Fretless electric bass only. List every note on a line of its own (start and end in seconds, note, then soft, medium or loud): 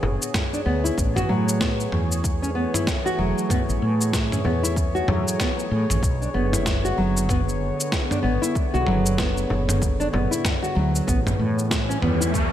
0.03 0.15 F#1 medium
0.66 0.89 D2 medium
0.98 1.21 A1 medium
1.29 1.86 A2 medium
1.92 2.64 E2 medium
3.19 3.31 E1 medium
3.69 3.78 A1 medium
3.82 4.38 A2 medium
4.45 5.01 E2 medium
5.08 5.21 E2 medium
5.71 5.84 A2 medium
5.90 5.99 A1 medium
6.03 6.26 B1 medium
6.34 6.91 F#1 medium
6.98 7.70 F#1 medium
8.24 8.37 G#1 medium
8.74 8.83 B1 medium
8.87 9.44 F#1 medium
9.50 10.07 F#1 medium
10.13 10.26 F#1 medium
10.76 11.00 D2 medium
11.08 11.31 A1 medium
11.39 11.96 A2 medium
12.03 12.52 E2 medium